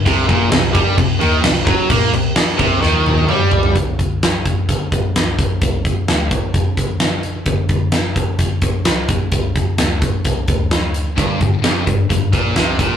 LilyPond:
<<
  \new Staff \with { instrumentName = "Distorted electric guitar" } { \clef bass \time 4/4 \key c \major \tempo 4 = 130 c8 bes,8 c8 g8 c8 ees8 c8 fis8 | bes8 c8 r8 c8 ees4 g4 | \key c \lydian r1 | r1 |
r1 | r1 | g,8 g,8 f,8 g,8 g,8 bes,8 c8 bes,8 | }
  \new Staff \with { instrumentName = "Overdriven electric guitar" } { \clef bass \time 4/4 \key c \major c8 bes,8 c8 g8 c8 ees8 c8 fis8 | bes8 c8 r8 c8 ees4 g4 | \key c \lydian r1 | r1 |
r1 | r1 | g,8 g,8 f,8 g,8 g,8 bes,8 c8 bes,8 | }
  \new Staff \with { instrumentName = "Overdriven electric guitar" } { \clef bass \time 4/4 \key c \major c8 bes,8 c8 g8 c8 ees8 c8 fis8 | bes8 c8 r8 c8 ees4 g4 | \key c \lydian r1 | r1 |
r1 | r1 | r1 | }
  \new Staff \with { instrumentName = "Tine electric piano" } { \clef bass \time 4/4 \key c \major c,8 bes,,8 c,8 g,8 c,8 ees,8 c,8 fis,8 | bes,8 c,8 r8 c,8 ees,4 g,4 | \key c \lydian g,,8 g,,8 f,,8 g,,8 g,,8 bes,,8 c,8 bes,,8 | c,8 g,,8 d,8 bes,,8 f,8 g,,8 g,,8 g,,8 |
g,,8 g,,8 f,,8 g,,8 g,,8 bes,,8 c,8 bes,,8 | c,8 r8 d,8 bes,,8 c,8 d,4. | g,,8 g,,8 f,,8 g,,8 g,,8 bes,,8 c,8 bes,,8 | }
  \new DrumStaff \with { instrumentName = "Drums" } \drummode { \time 4/4 <cymc bd>8 <cymc bd>8 <cymc sn>8 <cymc bd>8 <cymc bd>8 cymc8 <cymc sn>8 <cymc bd>8 | <cymc bd>8 cymc8 <cymc sn>8 <cymc bd>8 sn8 tommh16 tommh16 toml8 tomfh16 tomfh16 | <hh bd>8 <hh bd>8 <hh sn>8 <hh bd>8 <hh bd>8 <hh bd>8 <hh sn>8 <hh bd>8 | <hh bd>8 <hh bd>8 <hh sn>8 <hh bd>8 <hh bd>8 <hh bd>8 <hh sn>8 hh8 |
<hh bd>8 <hh bd>8 <hh sn>8 <hh bd>8 <hh bd>8 <hh bd>8 <hh sn>8 <hh bd>8 | <hh bd>8 <hh bd>8 <hh sn>8 <hh bd>8 <hh bd>8 <hh bd>8 <hh sn>8 hh8 | <hh bd>8 <hh bd>8 <hh sn>8 <hh bd>8 <hh bd>8 <hh bd>8 <hh sn>8 <hh bd>8 | }
>>